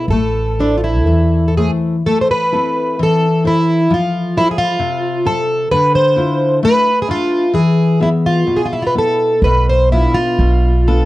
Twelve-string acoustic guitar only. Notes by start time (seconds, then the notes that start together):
0.10 A4
0.60 D4
0.78 F4
0.84 E4
1.48 A4
1.57 G#4
2.06 A4
2.21 C5
2.31 B4
3.03 A4
3.47 E4
3.94 F4
4.38 E4
4.51 G#4
4.58 F4
5.27 A4
5.72 B4
5.95 C5
6.65 B4
7.02 G#4
7.11 F4
7.55 G#4
8.03 E4
8.26 F4
8.56 G#4
8.65 F4
8.73 E4
8.82 F4
8.87 B4
8.99 A4
9.44 B4
9.69 C5
9.92 E4
10.14 F4
10.88 A4